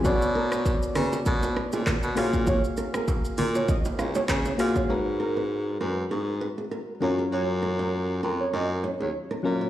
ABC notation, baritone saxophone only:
X:1
M:4/4
L:1/16
Q:"Swing 16ths" 1/4=99
K:F#
V:1 name="Baritone saxophone" clef=bass
B,,4- B,, z C,2 B,,3 A,,2 B,, A,,2- | A,,2 z4 A,,3 z C,,2 C,2 A,,2 | G,,6 F,,2 G,,3 z3 F,,2 | F,,6 E,,2 F,,3 D,, z2 A,,2 |]